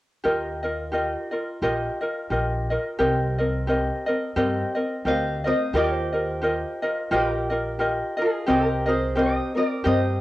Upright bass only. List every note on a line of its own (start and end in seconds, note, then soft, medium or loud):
0.25 1.14 D#2 medium
1.62 1.87 A#1 medium
2.30 2.75 A#1 medium
3.00 3.89 C2 medium
4.36 4.62 G2 medium
5.05 5.50 D2 medium
5.73 6.62 D#2 medium
7.11 8.00 A#1 medium
8.48 9.37 C2 medium
9.86 10.21 G2 medium